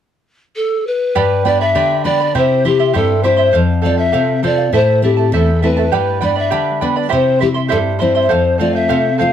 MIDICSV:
0, 0, Header, 1, 4, 480
1, 0, Start_track
1, 0, Tempo, 595829
1, 926, Time_signature, 2, 2, 24, 8
1, 7515, End_track
2, 0, Start_track
2, 0, Title_t, "Charango"
2, 0, Program_c, 0, 24
2, 928, Note_on_c, 0, 67, 76
2, 930, Note_on_c, 0, 71, 71
2, 931, Note_on_c, 0, 79, 73
2, 932, Note_on_c, 0, 83, 74
2, 933, Note_on_c, 0, 74, 82
2, 1158, Note_off_c, 0, 79, 0
2, 1163, Note_off_c, 0, 71, 0
2, 1164, Note_off_c, 0, 74, 0
2, 1167, Note_off_c, 0, 67, 0
2, 1167, Note_on_c, 0, 79, 51
2, 1169, Note_off_c, 0, 83, 0
2, 1173, Note_on_c, 0, 71, 51
2, 1174, Note_on_c, 0, 74, 47
2, 1179, Note_on_c, 0, 83, 61
2, 1287, Note_off_c, 0, 79, 0
2, 1288, Note_off_c, 0, 83, 0
2, 1290, Note_off_c, 0, 71, 0
2, 1290, Note_off_c, 0, 74, 0
2, 1297, Note_on_c, 0, 83, 41
2, 1302, Note_on_c, 0, 74, 41
2, 1304, Note_on_c, 0, 71, 39
2, 1405, Note_off_c, 0, 74, 0
2, 1407, Note_off_c, 0, 71, 0
2, 1408, Note_on_c, 0, 67, 54
2, 1409, Note_on_c, 0, 79, 55
2, 1410, Note_off_c, 0, 83, 0
2, 1415, Note_on_c, 0, 74, 67
2, 1417, Note_on_c, 0, 71, 65
2, 1419, Note_on_c, 0, 83, 64
2, 1636, Note_off_c, 0, 79, 0
2, 1641, Note_off_c, 0, 71, 0
2, 1643, Note_off_c, 0, 74, 0
2, 1643, Note_off_c, 0, 83, 0
2, 1646, Note_on_c, 0, 79, 57
2, 1647, Note_off_c, 0, 67, 0
2, 1651, Note_on_c, 0, 71, 56
2, 1652, Note_on_c, 0, 74, 59
2, 1653, Note_on_c, 0, 83, 58
2, 1762, Note_off_c, 0, 83, 0
2, 1766, Note_off_c, 0, 74, 0
2, 1766, Note_off_c, 0, 79, 0
2, 1769, Note_off_c, 0, 71, 0
2, 1772, Note_on_c, 0, 83, 43
2, 1776, Note_on_c, 0, 74, 42
2, 1782, Note_on_c, 0, 71, 37
2, 1889, Note_off_c, 0, 83, 0
2, 1891, Note_off_c, 0, 74, 0
2, 1892, Note_on_c, 0, 67, 65
2, 1894, Note_off_c, 0, 71, 0
2, 1894, Note_on_c, 0, 76, 71
2, 1895, Note_on_c, 0, 84, 63
2, 1896, Note_on_c, 0, 72, 64
2, 1898, Note_on_c, 0, 64, 71
2, 2121, Note_off_c, 0, 72, 0
2, 2125, Note_off_c, 0, 64, 0
2, 2127, Note_off_c, 0, 76, 0
2, 2128, Note_off_c, 0, 84, 0
2, 2129, Note_off_c, 0, 67, 0
2, 2130, Note_on_c, 0, 72, 47
2, 2135, Note_on_c, 0, 64, 46
2, 2137, Note_on_c, 0, 76, 64
2, 2138, Note_on_c, 0, 84, 53
2, 2240, Note_off_c, 0, 84, 0
2, 2242, Note_off_c, 0, 76, 0
2, 2246, Note_off_c, 0, 64, 0
2, 2249, Note_off_c, 0, 72, 0
2, 2250, Note_on_c, 0, 84, 40
2, 2252, Note_on_c, 0, 76, 43
2, 2255, Note_on_c, 0, 64, 40
2, 2358, Note_off_c, 0, 76, 0
2, 2360, Note_off_c, 0, 64, 0
2, 2362, Note_off_c, 0, 84, 0
2, 2364, Note_on_c, 0, 67, 62
2, 2365, Note_on_c, 0, 72, 60
2, 2368, Note_on_c, 0, 76, 56
2, 2369, Note_on_c, 0, 64, 60
2, 2372, Note_on_c, 0, 84, 66
2, 2594, Note_off_c, 0, 72, 0
2, 2599, Note_off_c, 0, 64, 0
2, 2601, Note_off_c, 0, 76, 0
2, 2604, Note_on_c, 0, 72, 52
2, 2605, Note_off_c, 0, 67, 0
2, 2606, Note_off_c, 0, 84, 0
2, 2609, Note_on_c, 0, 64, 52
2, 2610, Note_on_c, 0, 76, 59
2, 2616, Note_on_c, 0, 84, 65
2, 2704, Note_off_c, 0, 84, 0
2, 2714, Note_off_c, 0, 76, 0
2, 2714, Note_on_c, 0, 84, 45
2, 2715, Note_off_c, 0, 64, 0
2, 2724, Note_on_c, 0, 76, 44
2, 2725, Note_off_c, 0, 72, 0
2, 2725, Note_on_c, 0, 64, 33
2, 2830, Note_off_c, 0, 64, 0
2, 2833, Note_on_c, 0, 69, 58
2, 2840, Note_off_c, 0, 84, 0
2, 2842, Note_on_c, 0, 72, 72
2, 2845, Note_off_c, 0, 76, 0
2, 2849, Note_on_c, 0, 77, 68
2, 3064, Note_off_c, 0, 69, 0
2, 3068, Note_off_c, 0, 72, 0
2, 3074, Note_on_c, 0, 69, 56
2, 3077, Note_off_c, 0, 77, 0
2, 3078, Note_on_c, 0, 72, 50
2, 3087, Note_on_c, 0, 77, 62
2, 3194, Note_off_c, 0, 77, 0
2, 3200, Note_off_c, 0, 72, 0
2, 3201, Note_off_c, 0, 69, 0
2, 3204, Note_on_c, 0, 77, 48
2, 3209, Note_on_c, 0, 72, 39
2, 3314, Note_off_c, 0, 72, 0
2, 3318, Note_off_c, 0, 77, 0
2, 3320, Note_on_c, 0, 69, 55
2, 3324, Note_on_c, 0, 72, 62
2, 3328, Note_on_c, 0, 77, 75
2, 3556, Note_off_c, 0, 69, 0
2, 3566, Note_off_c, 0, 72, 0
2, 3566, Note_on_c, 0, 69, 57
2, 3568, Note_off_c, 0, 77, 0
2, 3575, Note_on_c, 0, 72, 57
2, 3577, Note_on_c, 0, 77, 53
2, 3677, Note_off_c, 0, 77, 0
2, 3687, Note_off_c, 0, 69, 0
2, 3687, Note_on_c, 0, 77, 44
2, 3691, Note_off_c, 0, 72, 0
2, 3702, Note_on_c, 0, 72, 33
2, 3802, Note_off_c, 0, 72, 0
2, 3807, Note_off_c, 0, 77, 0
2, 3811, Note_on_c, 0, 72, 59
2, 3812, Note_on_c, 0, 76, 64
2, 3813, Note_on_c, 0, 69, 69
2, 3816, Note_on_c, 0, 64, 63
2, 3820, Note_on_c, 0, 81, 73
2, 4048, Note_off_c, 0, 76, 0
2, 4049, Note_off_c, 0, 72, 0
2, 4050, Note_off_c, 0, 69, 0
2, 4052, Note_off_c, 0, 64, 0
2, 4054, Note_off_c, 0, 81, 0
2, 4058, Note_on_c, 0, 76, 52
2, 4061, Note_on_c, 0, 64, 53
2, 4063, Note_on_c, 0, 69, 46
2, 4065, Note_on_c, 0, 81, 53
2, 4154, Note_off_c, 0, 81, 0
2, 4164, Note_on_c, 0, 81, 41
2, 4167, Note_off_c, 0, 64, 0
2, 4167, Note_off_c, 0, 69, 0
2, 4173, Note_off_c, 0, 76, 0
2, 4177, Note_on_c, 0, 64, 33
2, 4177, Note_on_c, 0, 69, 40
2, 4286, Note_off_c, 0, 81, 0
2, 4287, Note_off_c, 0, 64, 0
2, 4289, Note_off_c, 0, 69, 0
2, 4297, Note_on_c, 0, 64, 48
2, 4297, Note_on_c, 0, 72, 49
2, 4297, Note_on_c, 0, 76, 59
2, 4299, Note_on_c, 0, 69, 61
2, 4304, Note_on_c, 0, 81, 66
2, 4520, Note_off_c, 0, 76, 0
2, 4529, Note_on_c, 0, 76, 50
2, 4530, Note_off_c, 0, 64, 0
2, 4531, Note_off_c, 0, 69, 0
2, 4533, Note_off_c, 0, 72, 0
2, 4534, Note_off_c, 0, 81, 0
2, 4539, Note_on_c, 0, 64, 54
2, 4540, Note_on_c, 0, 69, 56
2, 4544, Note_on_c, 0, 81, 58
2, 4636, Note_off_c, 0, 81, 0
2, 4646, Note_off_c, 0, 69, 0
2, 4646, Note_on_c, 0, 81, 45
2, 4649, Note_off_c, 0, 76, 0
2, 4650, Note_off_c, 0, 64, 0
2, 4655, Note_on_c, 0, 69, 42
2, 4660, Note_on_c, 0, 64, 33
2, 4766, Note_on_c, 0, 67, 57
2, 4767, Note_off_c, 0, 81, 0
2, 4769, Note_on_c, 0, 79, 62
2, 4771, Note_off_c, 0, 64, 0
2, 4771, Note_off_c, 0, 69, 0
2, 4774, Note_on_c, 0, 71, 62
2, 4774, Note_on_c, 0, 74, 63
2, 4774, Note_on_c, 0, 83, 61
2, 4990, Note_off_c, 0, 79, 0
2, 4995, Note_off_c, 0, 71, 0
2, 4996, Note_off_c, 0, 74, 0
2, 5000, Note_on_c, 0, 79, 50
2, 5003, Note_off_c, 0, 83, 0
2, 5005, Note_on_c, 0, 71, 56
2, 5006, Note_on_c, 0, 74, 56
2, 5007, Note_off_c, 0, 67, 0
2, 5012, Note_on_c, 0, 83, 57
2, 5109, Note_off_c, 0, 83, 0
2, 5116, Note_off_c, 0, 74, 0
2, 5119, Note_on_c, 0, 83, 44
2, 5122, Note_off_c, 0, 71, 0
2, 5124, Note_off_c, 0, 79, 0
2, 5125, Note_on_c, 0, 74, 43
2, 5132, Note_on_c, 0, 71, 35
2, 5234, Note_off_c, 0, 71, 0
2, 5236, Note_off_c, 0, 74, 0
2, 5239, Note_on_c, 0, 67, 53
2, 5240, Note_off_c, 0, 83, 0
2, 5243, Note_on_c, 0, 71, 59
2, 5244, Note_on_c, 0, 79, 60
2, 5246, Note_on_c, 0, 74, 64
2, 5249, Note_on_c, 0, 83, 62
2, 5477, Note_off_c, 0, 79, 0
2, 5478, Note_off_c, 0, 71, 0
2, 5483, Note_off_c, 0, 74, 0
2, 5484, Note_off_c, 0, 67, 0
2, 5485, Note_off_c, 0, 83, 0
2, 5487, Note_on_c, 0, 79, 51
2, 5488, Note_on_c, 0, 71, 55
2, 5493, Note_on_c, 0, 74, 53
2, 5494, Note_on_c, 0, 83, 54
2, 5596, Note_off_c, 0, 83, 0
2, 5601, Note_off_c, 0, 74, 0
2, 5603, Note_off_c, 0, 71, 0
2, 5606, Note_on_c, 0, 83, 35
2, 5608, Note_off_c, 0, 79, 0
2, 5611, Note_on_c, 0, 74, 43
2, 5612, Note_on_c, 0, 71, 36
2, 5711, Note_on_c, 0, 67, 65
2, 5713, Note_on_c, 0, 72, 72
2, 5714, Note_off_c, 0, 74, 0
2, 5715, Note_off_c, 0, 71, 0
2, 5718, Note_off_c, 0, 83, 0
2, 5718, Note_on_c, 0, 64, 62
2, 5718, Note_on_c, 0, 76, 71
2, 5721, Note_on_c, 0, 84, 75
2, 5940, Note_off_c, 0, 72, 0
2, 5948, Note_off_c, 0, 64, 0
2, 5950, Note_on_c, 0, 72, 47
2, 5956, Note_off_c, 0, 76, 0
2, 5957, Note_off_c, 0, 84, 0
2, 5957, Note_on_c, 0, 64, 50
2, 5960, Note_off_c, 0, 67, 0
2, 5965, Note_on_c, 0, 76, 58
2, 5967, Note_on_c, 0, 84, 56
2, 6067, Note_off_c, 0, 84, 0
2, 6074, Note_off_c, 0, 76, 0
2, 6076, Note_off_c, 0, 64, 0
2, 6076, Note_on_c, 0, 84, 47
2, 6079, Note_off_c, 0, 72, 0
2, 6084, Note_on_c, 0, 76, 43
2, 6086, Note_on_c, 0, 64, 36
2, 6184, Note_off_c, 0, 64, 0
2, 6188, Note_off_c, 0, 84, 0
2, 6190, Note_on_c, 0, 67, 59
2, 6191, Note_off_c, 0, 76, 0
2, 6194, Note_on_c, 0, 64, 60
2, 6195, Note_on_c, 0, 72, 67
2, 6197, Note_on_c, 0, 84, 61
2, 6201, Note_on_c, 0, 76, 64
2, 6425, Note_off_c, 0, 72, 0
2, 6427, Note_off_c, 0, 64, 0
2, 6433, Note_off_c, 0, 76, 0
2, 6434, Note_off_c, 0, 84, 0
2, 6434, Note_on_c, 0, 72, 53
2, 6436, Note_on_c, 0, 64, 53
2, 6439, Note_off_c, 0, 67, 0
2, 6443, Note_on_c, 0, 76, 55
2, 6444, Note_on_c, 0, 84, 57
2, 6555, Note_off_c, 0, 84, 0
2, 6561, Note_off_c, 0, 72, 0
2, 6562, Note_off_c, 0, 64, 0
2, 6562, Note_off_c, 0, 76, 0
2, 6565, Note_on_c, 0, 84, 44
2, 6572, Note_on_c, 0, 76, 35
2, 6579, Note_on_c, 0, 64, 35
2, 6675, Note_off_c, 0, 64, 0
2, 6678, Note_on_c, 0, 69, 75
2, 6678, Note_on_c, 0, 72, 75
2, 6686, Note_on_c, 0, 77, 77
2, 6687, Note_off_c, 0, 84, 0
2, 6690, Note_off_c, 0, 76, 0
2, 6902, Note_off_c, 0, 69, 0
2, 6911, Note_off_c, 0, 72, 0
2, 6911, Note_on_c, 0, 69, 49
2, 6915, Note_off_c, 0, 77, 0
2, 6920, Note_on_c, 0, 72, 48
2, 6924, Note_on_c, 0, 77, 54
2, 7023, Note_off_c, 0, 77, 0
2, 7033, Note_on_c, 0, 77, 48
2, 7038, Note_off_c, 0, 72, 0
2, 7040, Note_off_c, 0, 69, 0
2, 7048, Note_on_c, 0, 72, 38
2, 7153, Note_off_c, 0, 77, 0
2, 7154, Note_off_c, 0, 72, 0
2, 7156, Note_on_c, 0, 69, 57
2, 7163, Note_on_c, 0, 77, 69
2, 7164, Note_on_c, 0, 72, 65
2, 7385, Note_off_c, 0, 69, 0
2, 7391, Note_off_c, 0, 72, 0
2, 7394, Note_on_c, 0, 69, 56
2, 7397, Note_off_c, 0, 77, 0
2, 7401, Note_on_c, 0, 72, 58
2, 7406, Note_on_c, 0, 77, 60
2, 7510, Note_off_c, 0, 77, 0
2, 7515, Note_off_c, 0, 69, 0
2, 7515, Note_off_c, 0, 72, 0
2, 7515, End_track
3, 0, Start_track
3, 0, Title_t, "Pan flute"
3, 0, Program_c, 1, 75
3, 449, Note_on_c, 1, 69, 76
3, 697, Note_on_c, 1, 71, 91
3, 709, Note_off_c, 1, 69, 0
3, 1178, Note_on_c, 1, 74, 80
3, 1190, Note_off_c, 1, 71, 0
3, 1290, Note_on_c, 1, 76, 84
3, 1302, Note_off_c, 1, 74, 0
3, 1645, Note_on_c, 1, 74, 84
3, 1657, Note_off_c, 1, 76, 0
3, 1904, Note_on_c, 1, 72, 75
3, 1916, Note_off_c, 1, 74, 0
3, 2144, Note_on_c, 1, 67, 76
3, 2156, Note_off_c, 1, 72, 0
3, 2380, Note_on_c, 1, 69, 71
3, 2392, Note_off_c, 1, 67, 0
3, 2600, Note_off_c, 1, 69, 0
3, 2605, Note_on_c, 1, 72, 86
3, 2876, Note_off_c, 1, 72, 0
3, 3098, Note_on_c, 1, 74, 81
3, 3204, Note_off_c, 1, 74, 0
3, 3209, Note_on_c, 1, 76, 76
3, 3543, Note_off_c, 1, 76, 0
3, 3589, Note_on_c, 1, 74, 81
3, 3820, Note_on_c, 1, 72, 72
3, 3832, Note_off_c, 1, 74, 0
3, 4049, Note_off_c, 1, 72, 0
3, 4054, Note_on_c, 1, 67, 76
3, 4274, Note_off_c, 1, 67, 0
3, 4293, Note_on_c, 1, 69, 71
3, 4514, Note_off_c, 1, 69, 0
3, 4537, Note_on_c, 1, 71, 76
3, 4980, Note_off_c, 1, 71, 0
3, 5018, Note_on_c, 1, 74, 75
3, 5125, Note_off_c, 1, 74, 0
3, 5143, Note_on_c, 1, 76, 68
3, 5471, Note_off_c, 1, 76, 0
3, 5742, Note_on_c, 1, 72, 61
3, 5959, Note_off_c, 1, 72, 0
3, 5971, Note_on_c, 1, 67, 75
3, 6025, Note_off_c, 1, 67, 0
3, 6209, Note_on_c, 1, 69, 69
3, 6263, Note_off_c, 1, 69, 0
3, 6442, Note_on_c, 1, 72, 72
3, 6893, Note_off_c, 1, 72, 0
3, 6927, Note_on_c, 1, 74, 83
3, 7039, Note_off_c, 1, 74, 0
3, 7048, Note_on_c, 1, 76, 84
3, 7383, Note_off_c, 1, 76, 0
3, 7400, Note_on_c, 1, 77, 84
3, 7515, Note_off_c, 1, 77, 0
3, 7515, End_track
4, 0, Start_track
4, 0, Title_t, "Nylon-string guitar"
4, 0, Program_c, 2, 24
4, 932, Note_on_c, 2, 43, 54
4, 1167, Note_on_c, 2, 59, 42
4, 1172, Note_on_c, 2, 62, 35
4, 1179, Note_on_c, 2, 67, 41
4, 1395, Note_off_c, 2, 43, 0
4, 1413, Note_on_c, 2, 50, 60
4, 1551, Note_off_c, 2, 59, 0
4, 1554, Note_off_c, 2, 62, 0
4, 1558, Note_off_c, 2, 67, 0
4, 1650, Note_on_c, 2, 62, 33
4, 1653, Note_on_c, 2, 59, 39
4, 1658, Note_on_c, 2, 67, 43
4, 1840, Note_off_c, 2, 62, 0
4, 1843, Note_off_c, 2, 59, 0
4, 1843, Note_off_c, 2, 67, 0
4, 1876, Note_off_c, 2, 50, 0
4, 1892, Note_on_c, 2, 48, 56
4, 2134, Note_on_c, 2, 60, 41
4, 2138, Note_on_c, 2, 64, 37
4, 2143, Note_on_c, 2, 67, 40
4, 2355, Note_off_c, 2, 48, 0
4, 2377, Note_on_c, 2, 43, 54
4, 2516, Note_off_c, 2, 60, 0
4, 2517, Note_off_c, 2, 64, 0
4, 2521, Note_off_c, 2, 67, 0
4, 2607, Note_on_c, 2, 60, 41
4, 2614, Note_on_c, 2, 64, 36
4, 2620, Note_on_c, 2, 67, 44
4, 2799, Note_off_c, 2, 60, 0
4, 2803, Note_off_c, 2, 64, 0
4, 2807, Note_off_c, 2, 67, 0
4, 2838, Note_off_c, 2, 43, 0
4, 2858, Note_on_c, 2, 41, 58
4, 3100, Note_on_c, 2, 60, 38
4, 3105, Note_on_c, 2, 65, 36
4, 3109, Note_on_c, 2, 69, 50
4, 3319, Note_off_c, 2, 41, 0
4, 3335, Note_on_c, 2, 48, 62
4, 3479, Note_off_c, 2, 60, 0
4, 3482, Note_off_c, 2, 65, 0
4, 3484, Note_off_c, 2, 69, 0
4, 3570, Note_on_c, 2, 60, 37
4, 3575, Note_on_c, 2, 69, 46
4, 3576, Note_on_c, 2, 65, 33
4, 3762, Note_off_c, 2, 60, 0
4, 3763, Note_off_c, 2, 69, 0
4, 3765, Note_off_c, 2, 65, 0
4, 3797, Note_off_c, 2, 48, 0
4, 3807, Note_on_c, 2, 45, 52
4, 4047, Note_on_c, 2, 57, 40
4, 4052, Note_on_c, 2, 60, 41
4, 4055, Note_on_c, 2, 64, 44
4, 4273, Note_off_c, 2, 45, 0
4, 4286, Note_on_c, 2, 40, 59
4, 4432, Note_off_c, 2, 60, 0
4, 4433, Note_off_c, 2, 57, 0
4, 4436, Note_off_c, 2, 64, 0
4, 4533, Note_on_c, 2, 57, 38
4, 4538, Note_on_c, 2, 60, 39
4, 4541, Note_on_c, 2, 64, 43
4, 4723, Note_off_c, 2, 57, 0
4, 4727, Note_off_c, 2, 60, 0
4, 4727, Note_off_c, 2, 64, 0
4, 4753, Note_off_c, 2, 40, 0
4, 4773, Note_on_c, 2, 43, 56
4, 5009, Note_on_c, 2, 55, 45
4, 5012, Note_on_c, 2, 59, 33
4, 5019, Note_on_c, 2, 62, 43
4, 5236, Note_off_c, 2, 43, 0
4, 5250, Note_on_c, 2, 50, 58
4, 5394, Note_off_c, 2, 55, 0
4, 5394, Note_off_c, 2, 59, 0
4, 5395, Note_off_c, 2, 62, 0
4, 5494, Note_on_c, 2, 55, 35
4, 5494, Note_on_c, 2, 59, 37
4, 5497, Note_on_c, 2, 62, 47
4, 5683, Note_off_c, 2, 59, 0
4, 5684, Note_off_c, 2, 55, 0
4, 5686, Note_off_c, 2, 62, 0
4, 5715, Note_off_c, 2, 50, 0
4, 5740, Note_on_c, 2, 48, 56
4, 5972, Note_on_c, 2, 55, 40
4, 5976, Note_on_c, 2, 60, 38
4, 5982, Note_on_c, 2, 64, 44
4, 6200, Note_off_c, 2, 48, 0
4, 6219, Note_on_c, 2, 43, 63
4, 6355, Note_off_c, 2, 55, 0
4, 6357, Note_off_c, 2, 60, 0
4, 6361, Note_off_c, 2, 64, 0
4, 6457, Note_on_c, 2, 55, 43
4, 6460, Note_on_c, 2, 60, 40
4, 6464, Note_on_c, 2, 64, 41
4, 6645, Note_off_c, 2, 55, 0
4, 6648, Note_off_c, 2, 60, 0
4, 6650, Note_off_c, 2, 64, 0
4, 6680, Note_off_c, 2, 43, 0
4, 6696, Note_on_c, 2, 41, 55
4, 6931, Note_on_c, 2, 57, 40
4, 6934, Note_on_c, 2, 60, 39
4, 6936, Note_on_c, 2, 65, 49
4, 7158, Note_off_c, 2, 41, 0
4, 7172, Note_on_c, 2, 48, 65
4, 7314, Note_off_c, 2, 57, 0
4, 7315, Note_off_c, 2, 65, 0
4, 7316, Note_off_c, 2, 60, 0
4, 7415, Note_on_c, 2, 57, 41
4, 7419, Note_on_c, 2, 60, 35
4, 7424, Note_on_c, 2, 65, 43
4, 7515, Note_off_c, 2, 48, 0
4, 7515, Note_off_c, 2, 57, 0
4, 7515, Note_off_c, 2, 60, 0
4, 7515, Note_off_c, 2, 65, 0
4, 7515, End_track
0, 0, End_of_file